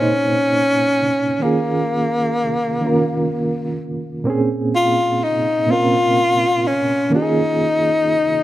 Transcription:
0.00 1.42 A#2 medium
0.00 1.40 A#3 medium
0.00 1.43 C4 medium
0.00 1.42 C#4 medium
0.00 1.44 C#4 loud
0.00 1.02 D#4 medium
0.00 1.43 G#4 medium
0.00 1.00 C5 medium
1.39 2.42 D#3 medium
1.39 2.42 A#3 medium
1.39 3.80 A#3 medium
1.39 2.43 C#4 medium
1.43 2.44 F4 medium
1.43 2.45 G#4 medium
2.81 3.84 D#3 medium
2.81 3.85 A#3 medium
2.81 3.86 C#4 medium
2.85 3.86 F4 medium
2.85 3.87 A#4 medium
4.24 5.27 A#2 medium
4.24 5.28 A#3 medium
4.24 5.29 C4 medium
4.28 5.29 C#4 medium
4.28 5.30 G#4 medium
4.75 5.25 F4 medium
5.24 5.73 D#4 medium
5.67 6.70 A#2 medium
5.67 6.71 A#3 medium
5.67 6.71 C4 medium
5.71 6.72 C#4 medium
5.71 6.69 F4 medium
5.71 6.73 A#4 medium
6.67 7.14 C#4 medium
7.10 8.13 D#3 medium
7.10 8.14 A#3 medium
7.10 8.15 C#4 medium
7.15 8.43 D#4 medium
7.15 8.15 F4 medium
7.15 7.21 G4 medium
7.22 8.19 G#4 medium

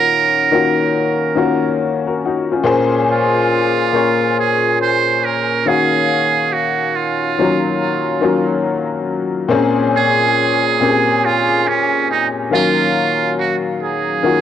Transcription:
0.00 0.19 D#3 medium
0.00 0.20 A#3 medium
0.00 0.20 C#4 medium
0.00 0.21 F4 medium
0.00 0.21 F#4 medium
0.00 1.81 A#4 loud
0.51 1.07 D#3 medium
0.51 1.08 A#3 medium
0.51 1.08 C#4 medium
0.51 1.08 F4 medium
0.51 1.09 F#4 medium
1.35 2.18 D#3 medium
1.35 2.18 A#3 medium
1.35 1.80 C#4 medium
1.35 1.80 F4 medium
1.35 1.81 F#4 medium
2.07 2.22 F#4 medium
2.07 2.21 A#4 medium
2.25 2.51 D#4 medium
2.25 2.51 F#4 medium
2.52 2.64 C#4 medium
2.52 2.92 F4 medium
2.64 3.46 A#2 loud
2.64 3.46 A#3 medium
2.64 3.47 C#4 medium
2.64 3.47 G#4 loud
2.64 3.47 C5 loud
3.11 4.34 F4 medium
3.93 5.05 A#2 medium
3.93 5.06 A#3 medium
3.93 5.06 C#4 medium
3.93 5.06 G#4 medium
3.93 5.07 C#5 medium
4.39 4.78 G#4 medium
4.82 5.26 C5 loud
5.25 5.69 A#4 loud
5.66 7.06 D#3 medium
5.66 7.06 A#3 medium
5.66 7.06 C#4 medium
5.66 7.07 F#4 medium
5.66 6.54 G#4 loud
5.66 7.07 F5 medium
6.53 6.97 F#4 medium
6.96 8.67 F4 medium
7.38 7.94 D#3 medium
7.38 7.95 F#3 medium
7.38 7.94 A#3 medium
7.38 7.94 C#4 medium
7.38 7.95 F4 medium
8.21 9.03 D#3 medium
8.21 9.05 F#3 medium
8.21 9.03 A#3 medium
8.21 9.04 C#4 medium
8.21 9.04 F4 medium
9.48 10.31 A#2 loud
9.48 10.32 A#3 medium
9.48 10.32 C4 medium
9.48 10.32 C#4 loud
9.48 10.33 G#4 loud
9.96 11.27 G#4 loud
10.80 11.92 A#2 medium
10.80 11.92 A#3 medium
10.80 11.93 C4 medium
10.80 11.93 C#4 medium
10.80 10.90 G4 medium
10.90 11.97 G#4 medium
11.25 11.70 F4 medium
11.68 12.10 C#4 medium
12.11 12.27 D#4 medium
12.51 13.91 D#3 medium
12.51 13.92 F#3 medium
12.51 13.91 A#3 medium
12.51 13.92 C#4 medium
12.51 13.35 F4 loud
12.51 13.92 F5 medium
13.39 13.55 F#4 medium
13.83 14.41 G#4 medium
14.23 14.41 D#3 medium
14.23 14.41 A#3 medium
14.23 14.41 C#4 medium
14.23 14.41 F4 medium
14.23 14.41 F#4 medium

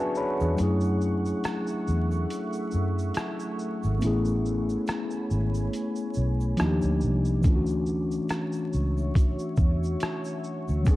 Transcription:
0.00 0.53 F#3 medium
0.00 0.54 B3 medium
0.00 0.41 D4 medium
0.00 0.16 F#4 medium
0.00 0.18 G#4 medium
0.00 0.55 G#4 medium
0.00 0.15 B4 medium
0.00 0.54 C#5 medium
0.00 0.60 D5 medium
0.00 0.60 E5 medium
0.00 3.98 F#5 medium
0.00 0.61 G#5 medium
0.00 0.15 A5 medium
0.00 3.97 C#6 medium
0.15 0.39 G#4 medium
0.15 0.39 C#5 medium
0.15 0.56 B5 medium
0.15 shaker medium
0.40 0.57 E2 medium
0.40 0.81 D4 soft
0.40 0.62 G#4 medium
0.40 shaker soft
0.55 3.96 F#3 medium
0.55 3.96 A3 medium
0.55 3.98 C#4 medium
0.55 closed hi-hat medium
0.55 shaker medium
0.59 1.33 F#2 loud
0.59 6.55 A3 medium
0.59 3.99 E4 medium
0.59 4.00 G#4 medium
0.59 3.99 E5 medium
0.81 shaker medium
0.84 shaker soft
1.01 shaker soft
1.26 shaker soft
1.44 cross-stick loud
1.44 closed hi-hat medium
1.44 shaker medium
1.67 shaker medium
1.67 shaker soft
1.87 2.25 E2 medium
1.87 shaker soft
2.11 shaker soft
2.30 closed hi-hat medium
2.30 shaker medium
2.32 shaker medium
2.53 shaker soft
2.54 shaker medium
2.71 3.10 F#2 medium
2.71 shaker soft
2.99 shaker soft
3.14 closed hi-hat medium
3.14 shaker medium
3.17 cross-stick loud
3.17 shaker medium
3.40 shaker soft
3.40 shaker medium
3.59 shaker medium
3.83 4.00 G#1 medium
3.83 shaker medium
3.99 4.76 A1 medium
3.99 6.53 A3 medium
3.99 6.54 B3 medium
3.99 6.55 C#4 medium
3.99 6.56 C#5 medium
3.99 6.56 G#5 medium
3.99 6.56 B5 medium
3.99 closed hi-hat medium
3.99 shaker medium
4.04 6.56 E4 medium
4.04 6.57 G#4 medium
4.25 shaker soft
4.26 shaker soft
4.46 shaker soft
4.69 shaker soft
4.87 cross-stick loud
4.87 closed hi-hat medium
4.87 shaker medium
5.11 shaker soft
5.30 5.67 G#1 medium
5.30 shaker soft
5.54 shaker soft
5.54 shaker medium
5.73 closed hi-hat medium
5.73 shaker medium
5.96 shaker soft
5.96 shaker medium
6.14 6.53 B1 medium
6.14 shaker soft
6.41 shaker soft
6.57 6.80 D#2 loud
6.57 7.43 F3 medium
6.57 7.44 A#3 medium
6.57 7.45 D4 medium
6.57 7.45 D#4 medium
6.57 6.67 F#4 medium
6.57 cross-stick loud
6.57 closed hi-hat medium
6.57 shaker medium
6.67 7.49 G4 medium
6.82 7.05 D2 medium
6.82 shaker soft
6.82 shaker medium
7.01 7.45 C2 medium
7.01 shaker medium
7.25 shaker soft
7.41 10.81 E3 medium
7.41 10.82 A3 medium
7.41 10.83 C#4 medium
7.41 10.84 F#4 medium
7.41 10.84 C#5 medium
7.41 10.83 E5 medium
7.41 10.96 C#6 medium
7.41 kick loud
7.41 closed hi-hat medium
7.41 shaker medium
7.45 8.18 D2 loud
7.45 10.84 D4 medium
7.45 7.54 F4 medium
7.55 10.89 F#4 medium
7.66 shaker medium
7.69 shaker soft
7.86 shaker soft
8.11 shaker soft
8.29 cross-stick loud
8.29 closed hi-hat medium
8.29 shaker medium
8.52 shaker soft
8.73 9.10 C#2 medium
8.73 shaker soft
8.97 shaker soft
9.15 kick loud
9.15 closed hi-hat medium
9.15 shaker medium
9.18 shaker medium
9.39 shaker soft
9.39 shaker medium
9.56 9.95 E2 medium
9.56 kick loud
9.56 shaker soft
9.84 shaker soft
10.00 cross-stick loud
10.00 closed hi-hat medium
10.00 shaker medium
10.24 shaker soft
10.24 shaker medium
10.44 shaker medium
10.68 10.87 D2 medium
10.68 shaker soft
10.83 10.96 F#3 medium
10.83 10.96 B3 medium
10.83 10.96 C#4 medium
10.83 10.96 G#4 medium
10.83 10.96 C#5 medium
10.83 10.96 F#5 medium
10.83 kick loud
10.83 closed hi-hat medium
10.83 shaker medium
10.87 10.96 E2 loud
10.87 10.96 D4 medium
10.87 10.96 G#4 medium

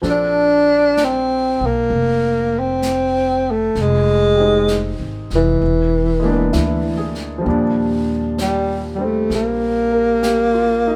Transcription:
0.02 1.56 A#1 medium
0.02 3.75 F3 soft
0.02 3.76 C4 soft
0.02 3.76 D4 soft
0.02 3.76 A4 soft
0.02 brush sweep soft
0.02 snare soft
0.10 1.06 D4 medium
0.97 brush sweep soft
0.97 snare soft
0.97 hi-hat pedal soft
1.04 1.68 C4 medium
1.61 1.88 B1 medium
1.66 2.61 A#3 medium
1.90 3.72 F1 medium
1.90 brush sweep soft
2.59 3.52 C4 medium
2.82 brush sweep soft
2.82 snare soft
2.82 hi-hat pedal medium
3.51 3.83 A3 medium
3.75 4.95 F1 medium
3.75 brush sweep soft
3.75 snare soft
3.81 4.98 G#3 medium
4.35 5.60 G#3 soft
4.35 5.61 C4 soft
4.35 5.59 G4 soft
4.41 5.62 D#4 soft
4.68 brush sweep soft
4.68 snare soft
4.68 hi-hat pedal soft
4.99 5.28 G#1 medium
5.30 5.59 F1 medium
5.30 snare soft
5.35 7.14 E3 medium
5.60 6.50 E1 medium
5.60 brush sweep soft
6.20 7.44 G#3 soft
6.20 7.45 A#3 soft
6.24 7.46 B3 soft
6.24 7.47 D4 medium
6.53 7.42 D2 medium
6.53 7.26 E4 soft
6.53 brush sweep soft
6.53 snare soft
6.53 hi-hat pedal soft
6.97 7.63 G#4 soft
7.15 snare soft
7.38 10.96 F3 soft
7.38 8.97 G3 soft
7.45 9.26 D#2 medium
7.45 10.96 A#2 soft
7.45 brush sweep soft
7.49 10.96 D4 medium
8.38 8.89 G3 medium
8.38 brush sweep soft
8.38 snare soft
8.38 hi-hat pedal soft
8.95 9.06 G3 soft
8.95 10.96 G3 soft
9.00 9.32 A3 medium
9.00 10.96 C4 soft
9.30 10.96 A#1 medium
9.30 brush sweep soft
9.30 snare soft
9.35 10.96 A#3 medium
9.92 10.40 A#4 soft
10.23 10.82 G4 soft
10.23 brush sweep soft
10.23 snare soft
10.23 hi-hat pedal soft
10.54 10.96 F4 soft
10.87 10.96 D#4 soft

